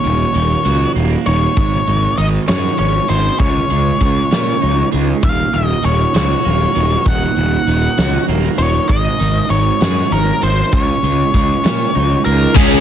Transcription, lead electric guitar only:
0, 0, Header, 1, 2, 480
1, 0, Start_track
1, 0, Key_signature, -6, "minor"
1, 0, Tempo, 610998
1, 1230, Time_signature, 6, 3, 24, 8
1, 10058, End_track
2, 0, Start_track
2, 0, Title_t, "Lead electric guitar"
2, 0, Program_c, 0, 29
2, 0, Note_on_c, 0, 73, 76
2, 714, Note_off_c, 0, 73, 0
2, 993, Note_on_c, 0, 73, 95
2, 1679, Note_off_c, 0, 73, 0
2, 1713, Note_on_c, 0, 75, 80
2, 1777, Note_off_c, 0, 75, 0
2, 1951, Note_on_c, 0, 73, 85
2, 2173, Note_off_c, 0, 73, 0
2, 2192, Note_on_c, 0, 73, 77
2, 2429, Note_off_c, 0, 73, 0
2, 2432, Note_on_c, 0, 72, 81
2, 2654, Note_off_c, 0, 72, 0
2, 2668, Note_on_c, 0, 73, 73
2, 3836, Note_off_c, 0, 73, 0
2, 4117, Note_on_c, 0, 77, 85
2, 4354, Note_on_c, 0, 75, 67
2, 4360, Note_off_c, 0, 77, 0
2, 4594, Note_off_c, 0, 75, 0
2, 4597, Note_on_c, 0, 73, 74
2, 4817, Note_off_c, 0, 73, 0
2, 4844, Note_on_c, 0, 73, 76
2, 5525, Note_off_c, 0, 73, 0
2, 5562, Note_on_c, 0, 78, 86
2, 6485, Note_off_c, 0, 78, 0
2, 6743, Note_on_c, 0, 73, 96
2, 6981, Note_off_c, 0, 73, 0
2, 6984, Note_on_c, 0, 75, 95
2, 7462, Note_off_c, 0, 75, 0
2, 7465, Note_on_c, 0, 73, 84
2, 7953, Note_on_c, 0, 70, 78
2, 7962, Note_off_c, 0, 73, 0
2, 8175, Note_off_c, 0, 70, 0
2, 8197, Note_on_c, 0, 72, 82
2, 8417, Note_off_c, 0, 72, 0
2, 8437, Note_on_c, 0, 73, 80
2, 9601, Note_off_c, 0, 73, 0
2, 9623, Note_on_c, 0, 82, 91
2, 9628, Note_on_c, 0, 70, 71
2, 9849, Note_off_c, 0, 82, 0
2, 9851, Note_off_c, 0, 70, 0
2, 9862, Note_on_c, 0, 80, 110
2, 9868, Note_on_c, 0, 68, 91
2, 10058, Note_off_c, 0, 68, 0
2, 10058, Note_off_c, 0, 80, 0
2, 10058, End_track
0, 0, End_of_file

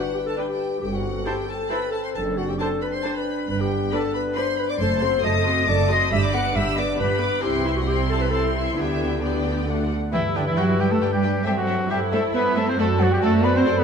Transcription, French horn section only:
0, 0, Header, 1, 2, 480
1, 0, Start_track
1, 0, Key_signature, 1, "major"
1, 0, Tempo, 440529
1, 907, Time_signature, 3, 2, 24, 8
1, 8578, Tempo, 449775
1, 11458, Tempo, 441176
1, 15013, End_track
2, 0, Start_track
2, 0, Title_t, "French horn section"
2, 0, Program_c, 0, 60
2, 0, Note_on_c, 0, 62, 43
2, 0, Note_on_c, 0, 71, 42
2, 852, Note_off_c, 0, 62, 0
2, 855, Note_off_c, 0, 71, 0
2, 899, Note_on_c, 0, 60, 44
2, 901, Note_on_c, 0, 69, 42
2, 2350, Note_off_c, 0, 69, 0
2, 2362, Note_on_c, 0, 62, 46
2, 3752, Note_off_c, 0, 60, 0
2, 3786, Note_on_c, 0, 59, 50
2, 5193, Note_off_c, 0, 62, 0
2, 5197, Note_off_c, 0, 59, 0
2, 5224, Note_on_c, 0, 57, 56
2, 5225, Note_on_c, 0, 60, 55
2, 6486, Note_off_c, 0, 57, 0
2, 6486, Note_off_c, 0, 60, 0
2, 6671, Note_on_c, 0, 59, 59
2, 6671, Note_on_c, 0, 62, 60
2, 8057, Note_off_c, 0, 59, 0
2, 8057, Note_off_c, 0, 62, 0
2, 8086, Note_on_c, 0, 64, 48
2, 8087, Note_on_c, 0, 60, 50
2, 8540, Note_off_c, 0, 64, 0
2, 8541, Note_off_c, 0, 60, 0
2, 8574, Note_on_c, 0, 64, 50
2, 8576, Note_on_c, 0, 60, 51
2, 9041, Note_off_c, 0, 60, 0
2, 9043, Note_off_c, 0, 64, 0
2, 9054, Note_on_c, 0, 60, 45
2, 9056, Note_on_c, 0, 64, 45
2, 9529, Note_off_c, 0, 60, 0
2, 9529, Note_off_c, 0, 64, 0
2, 9548, Note_on_c, 0, 59, 42
2, 9549, Note_on_c, 0, 67, 44
2, 10001, Note_off_c, 0, 67, 0
2, 10009, Note_off_c, 0, 59, 0
2, 10014, Note_on_c, 0, 67, 45
2, 10022, Note_on_c, 0, 59, 45
2, 10490, Note_off_c, 0, 67, 0
2, 10494, Note_off_c, 0, 59, 0
2, 10502, Note_on_c, 0, 66, 41
2, 10503, Note_on_c, 0, 57, 43
2, 10740, Note_off_c, 0, 57, 0
2, 10744, Note_off_c, 0, 66, 0
2, 10972, Note_on_c, 0, 67, 53
2, 10974, Note_on_c, 0, 71, 54
2, 12375, Note_off_c, 0, 67, 0
2, 12376, Note_off_c, 0, 71, 0
2, 12409, Note_on_c, 0, 72, 54
2, 12412, Note_on_c, 0, 69, 52
2, 13830, Note_off_c, 0, 72, 0
2, 13831, Note_off_c, 0, 69, 0
2, 13858, Note_on_c, 0, 72, 57
2, 13858, Note_on_c, 0, 74, 59
2, 15013, Note_off_c, 0, 72, 0
2, 15013, Note_off_c, 0, 74, 0
2, 15013, End_track
0, 0, End_of_file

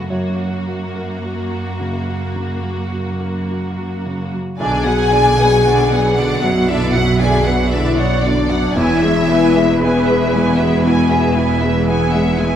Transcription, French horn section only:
0, 0, Header, 1, 2, 480
1, 0, Start_track
1, 0, Tempo, 1123596
1, 45, Time_signature, 4, 2, 24, 8
1, 1964, Tempo, 1039861
1, 5639, End_track
2, 0, Start_track
2, 0, Title_t, "French horn section"
2, 0, Program_c, 0, 60
2, 1965, Note_on_c, 0, 68, 90
2, 2671, Note_off_c, 0, 68, 0
2, 2691, Note_on_c, 0, 66, 75
2, 2929, Note_off_c, 0, 66, 0
2, 2938, Note_on_c, 0, 64, 86
2, 3052, Note_off_c, 0, 64, 0
2, 3060, Note_on_c, 0, 66, 86
2, 3173, Note_off_c, 0, 66, 0
2, 3173, Note_on_c, 0, 68, 77
2, 3289, Note_off_c, 0, 68, 0
2, 3294, Note_on_c, 0, 66, 85
2, 3410, Note_off_c, 0, 66, 0
2, 3420, Note_on_c, 0, 64, 80
2, 3532, Note_off_c, 0, 64, 0
2, 3538, Note_on_c, 0, 61, 77
2, 3651, Note_off_c, 0, 61, 0
2, 3658, Note_on_c, 0, 62, 80
2, 3886, Note_off_c, 0, 62, 0
2, 3897, Note_on_c, 0, 64, 95
2, 4377, Note_off_c, 0, 64, 0
2, 4382, Note_on_c, 0, 59, 88
2, 5573, Note_off_c, 0, 59, 0
2, 5639, End_track
0, 0, End_of_file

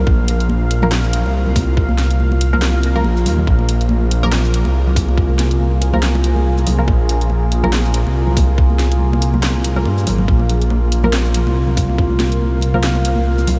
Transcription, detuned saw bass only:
0, 0, Header, 1, 2, 480
1, 0, Start_track
1, 0, Tempo, 425532
1, 78, Time_signature, 4, 2, 24, 8
1, 15331, End_track
2, 0, Start_track
2, 0, Title_t, "Detuned saw bass"
2, 0, Program_c, 0, 39
2, 77, Note_on_c, 0, 34, 102
2, 1396, Note_off_c, 0, 34, 0
2, 1411, Note_on_c, 0, 36, 83
2, 3432, Note_off_c, 0, 36, 0
2, 3439, Note_on_c, 0, 34, 104
2, 3680, Note_on_c, 0, 39, 80
2, 3697, Note_off_c, 0, 34, 0
2, 3902, Note_off_c, 0, 39, 0
2, 3917, Note_on_c, 0, 34, 97
2, 5236, Note_off_c, 0, 34, 0
2, 5254, Note_on_c, 0, 36, 83
2, 7505, Note_off_c, 0, 36, 0
2, 7520, Note_on_c, 0, 36, 101
2, 7742, Note_off_c, 0, 36, 0
2, 7758, Note_on_c, 0, 34, 98
2, 9077, Note_off_c, 0, 34, 0
2, 9095, Note_on_c, 0, 36, 81
2, 11118, Note_on_c, 0, 43, 100
2, 11135, Note_off_c, 0, 36, 0
2, 11358, Note_on_c, 0, 32, 79
2, 11375, Note_off_c, 0, 43, 0
2, 11581, Note_off_c, 0, 32, 0
2, 11598, Note_on_c, 0, 34, 102
2, 12917, Note_off_c, 0, 34, 0
2, 12933, Note_on_c, 0, 36, 83
2, 15184, Note_off_c, 0, 36, 0
2, 15199, Note_on_c, 0, 36, 98
2, 15331, Note_off_c, 0, 36, 0
2, 15331, End_track
0, 0, End_of_file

